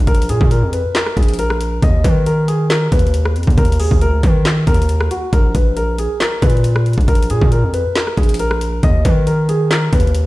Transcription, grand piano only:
0, 0, Header, 1, 2, 480
1, 0, Start_track
1, 0, Tempo, 437956
1, 80, Time_signature, 4, 2, 24, 8
1, 11248, End_track
2, 0, Start_track
2, 0, Title_t, "Grand piano"
2, 0, Program_c, 0, 0
2, 79, Note_on_c, 0, 70, 91
2, 284, Note_off_c, 0, 70, 0
2, 323, Note_on_c, 0, 68, 86
2, 527, Note_off_c, 0, 68, 0
2, 561, Note_on_c, 0, 70, 80
2, 766, Note_off_c, 0, 70, 0
2, 798, Note_on_c, 0, 71, 79
2, 1004, Note_off_c, 0, 71, 0
2, 1039, Note_on_c, 0, 70, 87
2, 1245, Note_off_c, 0, 70, 0
2, 1280, Note_on_c, 0, 68, 70
2, 1486, Note_off_c, 0, 68, 0
2, 1523, Note_on_c, 0, 70, 93
2, 1972, Note_off_c, 0, 70, 0
2, 2003, Note_on_c, 0, 75, 91
2, 2207, Note_off_c, 0, 75, 0
2, 2237, Note_on_c, 0, 71, 84
2, 2443, Note_off_c, 0, 71, 0
2, 2480, Note_on_c, 0, 70, 85
2, 2685, Note_off_c, 0, 70, 0
2, 2717, Note_on_c, 0, 68, 84
2, 2924, Note_off_c, 0, 68, 0
2, 2960, Note_on_c, 0, 70, 88
2, 3165, Note_off_c, 0, 70, 0
2, 3202, Note_on_c, 0, 71, 80
2, 3878, Note_off_c, 0, 71, 0
2, 3919, Note_on_c, 0, 70, 91
2, 4125, Note_off_c, 0, 70, 0
2, 4158, Note_on_c, 0, 68, 84
2, 4364, Note_off_c, 0, 68, 0
2, 4402, Note_on_c, 0, 70, 89
2, 4606, Note_off_c, 0, 70, 0
2, 4641, Note_on_c, 0, 71, 77
2, 4846, Note_off_c, 0, 71, 0
2, 5121, Note_on_c, 0, 70, 87
2, 5571, Note_off_c, 0, 70, 0
2, 5599, Note_on_c, 0, 66, 78
2, 5805, Note_off_c, 0, 66, 0
2, 5840, Note_on_c, 0, 70, 84
2, 6045, Note_off_c, 0, 70, 0
2, 6081, Note_on_c, 0, 71, 75
2, 6286, Note_off_c, 0, 71, 0
2, 6318, Note_on_c, 0, 70, 87
2, 6524, Note_off_c, 0, 70, 0
2, 6560, Note_on_c, 0, 68, 76
2, 6765, Note_off_c, 0, 68, 0
2, 6801, Note_on_c, 0, 70, 83
2, 7006, Note_off_c, 0, 70, 0
2, 7040, Note_on_c, 0, 71, 88
2, 7717, Note_off_c, 0, 71, 0
2, 7758, Note_on_c, 0, 70, 90
2, 7964, Note_off_c, 0, 70, 0
2, 8004, Note_on_c, 0, 68, 85
2, 8208, Note_off_c, 0, 68, 0
2, 8241, Note_on_c, 0, 70, 82
2, 8446, Note_off_c, 0, 70, 0
2, 8477, Note_on_c, 0, 71, 80
2, 8684, Note_off_c, 0, 71, 0
2, 8720, Note_on_c, 0, 70, 82
2, 8925, Note_off_c, 0, 70, 0
2, 8960, Note_on_c, 0, 68, 70
2, 9165, Note_off_c, 0, 68, 0
2, 9203, Note_on_c, 0, 70, 94
2, 9652, Note_off_c, 0, 70, 0
2, 9683, Note_on_c, 0, 75, 96
2, 9887, Note_off_c, 0, 75, 0
2, 9918, Note_on_c, 0, 71, 84
2, 10124, Note_off_c, 0, 71, 0
2, 10160, Note_on_c, 0, 70, 84
2, 10365, Note_off_c, 0, 70, 0
2, 10399, Note_on_c, 0, 68, 81
2, 10604, Note_off_c, 0, 68, 0
2, 10641, Note_on_c, 0, 70, 86
2, 10846, Note_off_c, 0, 70, 0
2, 10881, Note_on_c, 0, 71, 85
2, 11248, Note_off_c, 0, 71, 0
2, 11248, End_track
0, 0, End_of_file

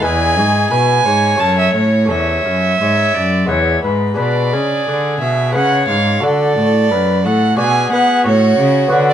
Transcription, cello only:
0, 0, Header, 1, 2, 480
1, 0, Start_track
1, 0, Tempo, 675676
1, 33, Time_signature, 3, 2, 24, 8
1, 994, Tempo, 695249
1, 3394, Tempo, 673401
1, 6430, End_track
2, 0, Start_track
2, 0, Title_t, "Cello"
2, 0, Program_c, 0, 42
2, 32, Note_on_c, 0, 40, 63
2, 272, Note_on_c, 0, 44, 61
2, 282, Note_off_c, 0, 40, 0
2, 512, Note_off_c, 0, 44, 0
2, 519, Note_on_c, 0, 47, 53
2, 751, Note_off_c, 0, 47, 0
2, 759, Note_on_c, 0, 44, 55
2, 993, Note_off_c, 0, 44, 0
2, 997, Note_on_c, 0, 42, 60
2, 1229, Note_off_c, 0, 42, 0
2, 1235, Note_on_c, 0, 45, 52
2, 1477, Note_on_c, 0, 40, 54
2, 1487, Note_off_c, 0, 45, 0
2, 1722, Note_off_c, 0, 40, 0
2, 1727, Note_on_c, 0, 42, 52
2, 1964, Note_off_c, 0, 42, 0
2, 1970, Note_on_c, 0, 44, 47
2, 2204, Note_off_c, 0, 44, 0
2, 2212, Note_on_c, 0, 42, 53
2, 2441, Note_off_c, 0, 42, 0
2, 2445, Note_on_c, 0, 40, 56
2, 2680, Note_off_c, 0, 40, 0
2, 2684, Note_on_c, 0, 44, 53
2, 2918, Note_off_c, 0, 44, 0
2, 2927, Note_on_c, 0, 47, 52
2, 3163, Note_on_c, 0, 49, 50
2, 3173, Note_off_c, 0, 47, 0
2, 3394, Note_off_c, 0, 49, 0
2, 3399, Note_on_c, 0, 50, 49
2, 3630, Note_off_c, 0, 50, 0
2, 3634, Note_on_c, 0, 47, 49
2, 3878, Note_on_c, 0, 49, 54
2, 3888, Note_off_c, 0, 47, 0
2, 4121, Note_off_c, 0, 49, 0
2, 4124, Note_on_c, 0, 44, 54
2, 4359, Note_off_c, 0, 44, 0
2, 4363, Note_on_c, 0, 50, 58
2, 4599, Note_off_c, 0, 50, 0
2, 4603, Note_on_c, 0, 45, 51
2, 4849, Note_on_c, 0, 42, 54
2, 4860, Note_off_c, 0, 45, 0
2, 5093, Note_on_c, 0, 45, 54
2, 5104, Note_off_c, 0, 42, 0
2, 5323, Note_off_c, 0, 45, 0
2, 5327, Note_on_c, 0, 47, 64
2, 5562, Note_off_c, 0, 47, 0
2, 5566, Note_on_c, 0, 59, 60
2, 5802, Note_on_c, 0, 45, 64
2, 5812, Note_off_c, 0, 59, 0
2, 6033, Note_off_c, 0, 45, 0
2, 6038, Note_on_c, 0, 49, 61
2, 6267, Note_off_c, 0, 49, 0
2, 6271, Note_on_c, 0, 50, 65
2, 6430, Note_off_c, 0, 50, 0
2, 6430, End_track
0, 0, End_of_file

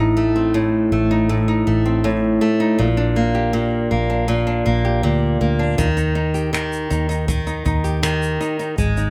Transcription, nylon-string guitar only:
0, 0, Header, 1, 2, 480
1, 0, Start_track
1, 0, Key_signature, -3, "major"
1, 0, Tempo, 749064
1, 1790, Time_signature, 4, 2, 24, 8
1, 5831, End_track
2, 0, Start_track
2, 0, Title_t, "Nylon-string guitar"
2, 0, Program_c, 0, 24
2, 0, Note_on_c, 0, 45, 83
2, 0, Note_on_c, 0, 60, 50
2, 0, Note_on_c, 0, 63, 54
2, 107, Note_on_c, 0, 57, 55
2, 226, Note_off_c, 0, 60, 0
2, 228, Note_on_c, 0, 60, 53
2, 340, Note_off_c, 0, 45, 0
2, 347, Note_on_c, 0, 45, 63
2, 582, Note_off_c, 0, 57, 0
2, 590, Note_on_c, 0, 57, 54
2, 702, Note_off_c, 0, 63, 0
2, 710, Note_on_c, 0, 63, 56
2, 821, Note_off_c, 0, 45, 0
2, 829, Note_on_c, 0, 45, 69
2, 941, Note_off_c, 0, 63, 0
2, 948, Note_on_c, 0, 63, 49
2, 1062, Note_off_c, 0, 57, 0
2, 1069, Note_on_c, 0, 57, 57
2, 1181, Note_off_c, 0, 60, 0
2, 1189, Note_on_c, 0, 60, 48
2, 1301, Note_off_c, 0, 45, 0
2, 1308, Note_on_c, 0, 45, 70
2, 1538, Note_off_c, 0, 57, 0
2, 1546, Note_on_c, 0, 57, 58
2, 1658, Note_off_c, 0, 63, 0
2, 1666, Note_on_c, 0, 63, 55
2, 1785, Note_on_c, 0, 46, 75
2, 1789, Note_off_c, 0, 45, 0
2, 1836, Note_off_c, 0, 57, 0
2, 1836, Note_off_c, 0, 63, 0
2, 1838, Note_off_c, 0, 60, 0
2, 1904, Note_on_c, 0, 62, 55
2, 2026, Note_on_c, 0, 58, 54
2, 2145, Note_on_c, 0, 67, 51
2, 2256, Note_off_c, 0, 46, 0
2, 2263, Note_on_c, 0, 46, 69
2, 2503, Note_off_c, 0, 58, 0
2, 2505, Note_on_c, 0, 58, 51
2, 2617, Note_off_c, 0, 62, 0
2, 2625, Note_on_c, 0, 62, 52
2, 2735, Note_off_c, 0, 46, 0
2, 2743, Note_on_c, 0, 46, 75
2, 2855, Note_off_c, 0, 62, 0
2, 2863, Note_on_c, 0, 62, 50
2, 2981, Note_off_c, 0, 58, 0
2, 2984, Note_on_c, 0, 58, 59
2, 3104, Note_off_c, 0, 67, 0
2, 3106, Note_on_c, 0, 67, 51
2, 3217, Note_off_c, 0, 46, 0
2, 3225, Note_on_c, 0, 46, 69
2, 3463, Note_off_c, 0, 58, 0
2, 3466, Note_on_c, 0, 58, 55
2, 3576, Note_off_c, 0, 62, 0
2, 3584, Note_on_c, 0, 62, 56
2, 3702, Note_off_c, 0, 58, 0
2, 3705, Note_on_c, 0, 51, 73
2, 3755, Note_off_c, 0, 62, 0
2, 3756, Note_off_c, 0, 46, 0
2, 3824, Note_on_c, 0, 63, 53
2, 3940, Note_off_c, 0, 63, 0
2, 3942, Note_on_c, 0, 63, 55
2, 4061, Note_off_c, 0, 67, 0
2, 4064, Note_on_c, 0, 67, 51
2, 4181, Note_off_c, 0, 51, 0
2, 4184, Note_on_c, 0, 51, 69
2, 4422, Note_off_c, 0, 63, 0
2, 4424, Note_on_c, 0, 63, 58
2, 4540, Note_off_c, 0, 63, 0
2, 4543, Note_on_c, 0, 63, 52
2, 4663, Note_off_c, 0, 51, 0
2, 4666, Note_on_c, 0, 51, 70
2, 4783, Note_off_c, 0, 63, 0
2, 4786, Note_on_c, 0, 63, 52
2, 4903, Note_off_c, 0, 63, 0
2, 4906, Note_on_c, 0, 63, 57
2, 5017, Note_off_c, 0, 67, 0
2, 5024, Note_on_c, 0, 67, 47
2, 5142, Note_off_c, 0, 51, 0
2, 5145, Note_on_c, 0, 51, 74
2, 5384, Note_off_c, 0, 63, 0
2, 5386, Note_on_c, 0, 63, 56
2, 5504, Note_off_c, 0, 63, 0
2, 5507, Note_on_c, 0, 63, 49
2, 5624, Note_off_c, 0, 51, 0
2, 5627, Note_on_c, 0, 56, 75
2, 5676, Note_off_c, 0, 67, 0
2, 5748, Note_off_c, 0, 63, 0
2, 5750, Note_on_c, 0, 63, 50
2, 5831, Note_off_c, 0, 56, 0
2, 5831, Note_off_c, 0, 63, 0
2, 5831, End_track
0, 0, End_of_file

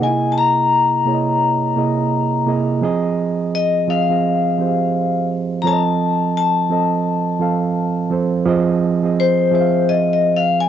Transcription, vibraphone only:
0, 0, Header, 1, 2, 480
1, 0, Start_track
1, 0, Time_signature, 4, 2, 24, 8
1, 0, Tempo, 705882
1, 7269, End_track
2, 0, Start_track
2, 0, Title_t, "Vibraphone"
2, 0, Program_c, 0, 11
2, 23, Note_on_c, 0, 80, 88
2, 218, Note_on_c, 0, 81, 69
2, 220, Note_off_c, 0, 80, 0
2, 246, Note_off_c, 0, 81, 0
2, 256, Note_on_c, 0, 82, 90
2, 1660, Note_off_c, 0, 82, 0
2, 2415, Note_on_c, 0, 75, 94
2, 2653, Note_on_c, 0, 77, 91
2, 2654, Note_off_c, 0, 75, 0
2, 3579, Note_off_c, 0, 77, 0
2, 3820, Note_on_c, 0, 82, 84
2, 3848, Note_off_c, 0, 82, 0
2, 3856, Note_on_c, 0, 81, 108
2, 4324, Note_off_c, 0, 81, 0
2, 4332, Note_on_c, 0, 81, 102
2, 5498, Note_off_c, 0, 81, 0
2, 6255, Note_on_c, 0, 72, 87
2, 6470, Note_off_c, 0, 72, 0
2, 6494, Note_on_c, 0, 72, 72
2, 6726, Note_on_c, 0, 75, 90
2, 6733, Note_off_c, 0, 72, 0
2, 6871, Note_off_c, 0, 75, 0
2, 6890, Note_on_c, 0, 75, 81
2, 7048, Note_on_c, 0, 77, 91
2, 7049, Note_off_c, 0, 75, 0
2, 7193, Note_off_c, 0, 77, 0
2, 7211, Note_on_c, 0, 80, 101
2, 7269, Note_off_c, 0, 80, 0
2, 7269, End_track
0, 0, End_of_file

